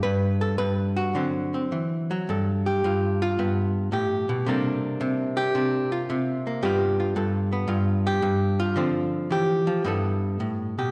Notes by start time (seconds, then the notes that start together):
0.03 G2 B4
0.41 A4
0.58 G2 B4
0.96 F#4
1.15 D3 F#3 C4
1.54 C4
1.72 E3
2.11 F#3
2.29 G2 A4
2.66 G4
2.84 G2 F4
3.22 F4
3.39 G2 B3
3.92 A2 G4
4.29 B2
4.46 C3 G3 A#3 D4 A4
5.01 C3
5.37 G4
5.55 C3 D4
5.92 F4
6.10 C3
6.47 A#3
6.63 G2 G3 B3 F4 G4
7.00 F4
7.16 G2 A4
7.53 B3
7.68 G2 F4
8.07 G4
8.22 G2
8.60 F4
8.76 D3 F3 C4
9.30 E3 G4
9.67 F3
9.85 G2 G3 B3 E4 A4
10.40 A2
10.78 B2 G4